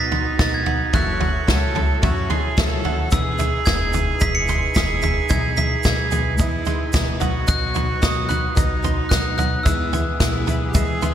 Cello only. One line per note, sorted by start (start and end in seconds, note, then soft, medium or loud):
0.00 0.96 D#4 loud
0.94 1.50 F#4 loud
1.48 2.03 A4 loud
2.03 2.32 F#4 loud
2.31 2.59 G#4 loud
2.58 3.14 A4 loud
3.12 6.38 G#4 loud
6.39 6.90 E4 loud
6.93 7.21 E4 loud
7.20 8.58 F#4 loud
8.57 9.68 D#4 loud
9.66 10.21 E4 loud
10.21 10.65 E4 loud
10.68 10.76 G4 medium
10.75 11.14 G#4 loud